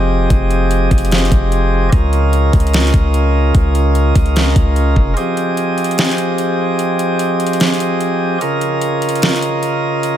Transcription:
Already playing: 808-style bass F1, pipe organ F3 C4 G4 G#4 D#5
0.30 808-style bass F1, kick, closed hi-hat
0.51 closed hi-hat
0.71 closed hi-hat
0.91 808-style bass F1, kick, closed hi-hat
0.98 closed hi-hat
1.05 closed hi-hat
1.11 snare, closed hi-hat
1.18 closed hi-hat
1.25 closed hi-hat
1.32 808-style bass F1, kick, closed hi-hat
1.52 closed hi-hat
1.92 808-style bass C#2, pipe organ C#3 C#4 F4 A#4 D#5, kick, closed hi-hat
2.13 closed hi-hat
2.33 closed hi-hat
2.53 808-style bass C#2, kick, closed hi-hat
2.60 closed hi-hat
2.67 closed hi-hat
2.74 snare, closed hi-hat
2.80 closed hi-hat
2.87 closed hi-hat
2.94 808-style bass C#2, kick, closed hi-hat
3.14 closed hi-hat
3.55 808-style bass C#2, kick, closed hi-hat
3.75 closed hi-hat
3.95 closed hi-hat
4.15 808-style bass C#2, kick, closed hi-hat
4.26 closed hi-hat
4.36 snare, closed hi-hat
4.56 808-style bass C#2, kick, closed hi-hat
4.76 closed hi-hat
4.96 808-style bass F1, kick
5.17 pipe organ F3 C4 G4 G#4, closed hi-hat
5.37 closed hi-hat
5.57 closed hi-hat
5.78 closed hi-hat
5.84 closed hi-hat
5.91 closed hi-hat
5.98 snare, closed hi-hat
6.05 closed hi-hat
6.11 closed hi-hat
6.18 closed hi-hat
6.38 closed hi-hat
6.79 closed hi-hat
6.99 closed hi-hat
7.19 closed hi-hat
7.40 closed hi-hat
7.47 closed hi-hat
7.53 closed hi-hat
7.60 snare, closed hi-hat
7.67 closed hi-hat
7.74 closed hi-hat
7.80 closed hi-hat
8.01 closed hi-hat
8.41 pipe organ C#3 C#4 F4 A#4, closed hi-hat
8.61 closed hi-hat
8.82 closed hi-hat
9.02 closed hi-hat
9.09 closed hi-hat
9.15 closed hi-hat
9.22 snare, closed hi-hat
9.29 closed hi-hat
9.36 closed hi-hat
9.42 closed hi-hat
9.63 closed hi-hat
10.03 closed hi-hat

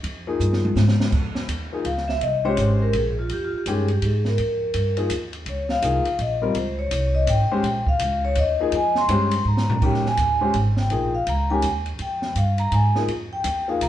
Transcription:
0.03 upright bass F2, ride
0.27 upright piano F3 A#3 D#4 G#4
0.40 upright bass G2, hi-hat pedal
0.53 snare
0.65 high tom
0.75 upright bass G#2, snare, hi-hat pedal
0.88 snare
1.00 snare
1.12 upright bass F2, kick, crash
1.35 snare
1.48 upright bass D#2, hi-hat pedal, ride
1.72 upright piano F3 A#3 D#4 G#4
1.85 upright bass C#2, vibraphone F5, ride
1.97 snare
2.08 vibraphone E5, snare
2.21 upright bass C2, vibraphone D#5, ride
2.45 upright piano G#3 C#4 G4 C5, vibraphone C#5
2.57 upright bass G#1, vibraphone C5, hi-hat pedal, ride
2.82 vibraphone A#4
2.93 upright bass A#1, vibraphone G#4, ride
3.19 vibraphone F4
3.29 upright bass F2, vibraphone G4, ride
3.45 vibraphone F4
3.53 muted upright bass stroke
3.58 vibraphone G4
3.66 upright bass G2, upright piano D#3 G#3 C#4 G4, vibraphone G#4, hi-hat pedal, ride
3.88 vibraphone G4, ride
4.02 upright bass G#2, vibraphone G#4, ride
4.25 vibraphone A#4, snare
4.38 upright bass F2, ride
4.74 upright bass G2, hi-hat pedal, ride
4.97 upright piano F3 A#3 D#4 G#4, ride
5.10 upright bass D#2, hi-hat pedal, ride
5.33 ride
5.46 upright bass C#2, vibraphone C#5, ride
5.69 vibraphone F5, snare
5.82 upright bass C2, upright piano F3 A#3 D#4 G#4, hi-hat pedal, ride
6.05 ride
6.19 upright bass A#1, vibraphone D#5, ride
6.42 upright piano G3 C4 F4 A#4
6.55 upright bass C#2, vibraphone C5, ride
6.79 vibraphone C#5
6.91 upright bass C2, hi-hat pedal, ride
7.15 vibraphone D#5
7.27 upright bass G#1, vibraphone G5, hi-hat pedal, ride
7.50 upright piano G#3 C#4 G4 C5, muted upright bass stroke
7.63 upright bass A#1, ride
7.86 vibraphone F5, kick
7.99 upright bass C#2, hi-hat pedal, ride
8.25 vibraphone C#5
8.35 upright bass D#2, vibraphone D#5, ride
8.60 upright piano F3 A#3 D#4 G#4
8.72 upright bass F2, vibraphone G#5, ride
8.95 vibraphone C6, snare
9.08 upright bass G2, upright piano G#3 C#4 G4 C5, hi-hat pedal, ride
9.31 ride
9.45 upright bass G#2, vibraphone A#5
9.57 snare
9.70 floor tom
9.81 upright bass F2, upright piano D#3 G#3 C#4 G4, vibraphone G5, kick, crash
9.94 snare
10.06 vibraphone G#5, snare
10.17 upright bass D#2, hi-hat pedal, ride
10.41 upright piano G#3 C#4 G4 C5
10.54 upright bass G#1, ride
10.77 vibraphone G5, snare
10.90 upright bass A#1, upright piano F3 A#3 D#4 G#4, ride
11.15 vibraphone F5
11.27 upright bass C#2, vibraphone A#5, ride
11.50 upright piano D#3 G#3 C#4 G4, vibraphone G#5
11.62 upright bass D#2, hi-hat pedal, ride
11.86 ride
11.99 upright bass F2, vibraphone G5, ride
12.22 snare
12.35 upright bass G2, vibraphone F5, hi-hat pedal, ride
12.58 vibraphone A#5, ride
12.71 upright bass G#2, vibraphone G#5, ride
12.95 upright piano F3 A#3 D#4 G#4, snare
13.07 upright bass F2, ride
13.33 vibraphone G5
13.44 upright bass D#2, hi-hat pedal, ride
13.68 upright piano F3 A#3 D#4 G#4, vibraphone F5
13.81 upright bass C2, vibraphone A#5, hi-hat pedal, ride

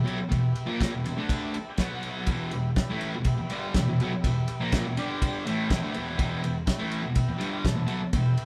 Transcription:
Already playing: transistor combo organ G4 B4 E5
0.04 distorted electric guitar B2 F#3, ride
0.15 muted distorted electric guitar stroke
0.28 distorted electric guitar E2 B2, transistor combo organ G4 B4 E5, kick, ride
0.56 ride
0.66 distorted electric guitar A#2 F3 A#3
0.79 transistor combo organ G4 B4 E5, kick, snare, ride
0.92 distorted electric guitar E2 B2
1.04 distorted electric guitar E2 B2, ride
1.17 distorted electric guitar D3 A3 D4
1.29 transistor combo organ G4 B4 E5, kick, ride
1.53 transistor combo organ A5, muted distorted electric guitar stroke, ride
1.70 transistor combo organ G5
1.78 distorted electric guitar B2 F#3 B3, transistor combo organ F#4 B4 F#5, kick, snare, ride
2.03 ride
2.07 transistor combo organ E5
2.27 distorted electric guitar E2 B2 E3, kick, ride
2.31 transistor combo organ G4 B4 E5
2.51 distorted electric guitar E2 B2, ride
2.76 transistor combo organ G4 B4 E5, kick, snare, ride
2.90 distorted electric guitar A2 E3 A3
3.01 ride
3.15 distorted electric guitar E2 B2
3.24 transistor combo organ G4 B4 E5, kick, ride
3.38 muted distorted electric guitar stroke
3.50 distorted electric guitar G2 D3 G3, ride
3.74 distorted electric guitar E2 B2, transistor combo organ G4 B4 E5, kick, snare, ride
3.87 distorted electric guitar E2 B2
4.00 distorted electric guitar B2 F#3, ride
4.12 muted distorted electric guitar stroke
4.21 transistor combo organ G4 B4 E5, kick, ride
4.26 distorted electric guitar E2 B2
4.48 ride
4.60 distorted electric guitar A#2 F3 A#3
4.71 transistor combo organ G4 B4 E5, kick, snare, ride
4.87 distorted electric guitar E2 B2
4.97 distorted electric guitar G2 D3 G3, transistor combo organ G4 D5 G5, ride
5.22 kick, ride
5.44 distorted electric guitar A2 E3, transistor combo organ B4 E5 G5, ride
5.48 distorted electric guitar A3
5.70 distorted electric guitar E2 B2, kick, snare, ride
5.81 distorted electric guitar D3 A3
5.94 distorted electric guitar E2 B2 E3, ride
6.14 distorted electric guitar E2 B2, transistor combo organ B4 E5 G5
6.19 distorted electric guitar E3, kick, ride
6.43 distorted electric guitar E2 B2, ride
6.66 transistor combo organ B4 E5 G5, kick, snare, ride
6.78 distorted electric guitar A2 E3 A3
6.91 ride
7.03 distorted electric guitar E2 B2
7.15 transistor combo organ B4 E5 G5, kick, ride
7.29 muted distorted electric guitar stroke
7.38 distorted electric guitar G2 D3 G3, ride
7.65 distorted electric guitar E2 B2, transistor combo organ B4 E5 A5, kick, snare, ride
7.75 distorted electric guitar E2 B2
7.86 distorted electric guitar B2 F#3, ride
7.99 muted distorted electric guitar stroke
8.13 distorted electric guitar E2 B2, transistor combo organ B4 E5 G5, kick, ride
8.37 ride

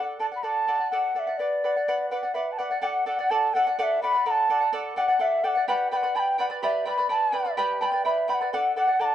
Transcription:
Already playing: charango A4 D5 F#5
0.19 charango A4 D5 F#5, quena A5
0.32 charango D5 F#5
0.36 quena B5
0.43 charango A4 D5 F#5, quena A5
0.68 charango A4 D5 F#5
0.79 charango D5 F#5
0.90 charango A4 D5 F#5, quena F#5
1.15 charango A4 D5 F#5, quena F#5
1.19 quena E5
1.27 charango D5 F#5
1.37 charango B4 D5 F#5, quena D5
1.64 charango B4 D5 F#5
1.76 charango D5 F#5
1.88 charango B4 D5 F#5
2.09 charango B4 D5 F#5, quena F#5
2.23 charango D5 F#5
2.34 charango B4 D5 F#5, quena E5
2.52 quena A5
2.58 charango B4 D5 F#5, quena F#5
2.71 charango D5 F#5
2.82 charango A4 D5 F#5, quena G5
2.87 quena F#5
3.06 charango A4 D5 F#5, quena F#5
3.19 charango D5 F#5
3.30 charango A4 D5 F#5, quena A5
3.54 charango A4 D5 F#5, quena F#5
3.67 charango D5 F#5
3.79 charango A4 D5 F#5, quena F#5
3.83 quena E5
4.02 charango A4 D5 F#5, quena B5
4.14 charango D5 F#5
4.26 charango A4 D5 F#5, quena A#5
4.31 quena A5
4.50 charango A4 D5 F#5
4.60 charango D5 F#5
4.73 charango A4 D5 F#5
4.96 charango A4 D5 F#5, quena G5
5.02 quena F#5
5.08 charango D5 F#5
5.19 charango A4 D5 F#5, quena E5
5.44 charango A4 D5 F#5, quena G5
5.48 quena F#5
5.55 charango D5 F#5
5.68 charango G4 B4 D5 G5 B5, quena F#5
5.91 charango B4 D5 G5 B5, quena G5
5.97 quena F#5
6.03 charango B4 D5 B5
6.15 charango B4 D5 G5 B5, quena A5
6.19 quena G5
6.38 charango B4 D5 G5 B5, quena F#5
6.50 charango B4 D5 B5
6.62 charango G4 B4 D5 G5 B5, quena E5
6.85 charango B4 D5 G5 B5, quena B5
6.98 charango B4 D5 B5
7.09 charango B4 D5 G5 B5, quena A5
7.32 charango B4 D5 G5 B5
7.45 charango B4 D5 B5
7.57 charango G4 B4 D5 G5 B5
7.80 charango B4 D5 G5 B5, quena A5
7.85 quena G5
7.92 charango B4 D5 B5
8.05 charango B4 D5 G5 B5, quena E5
8.28 charango B4 D5 G5 B5, quena G5
8.34 quena F#5
8.41 charango B4 D5 B5
8.53 charango A4 D5 F#5, quena F#5
8.76 charango A4 D5 F#5, quena F#5
8.87 charango D5 F#5
8.99 charango A4 D5 F#5, quena A#5
9.05 quena A5

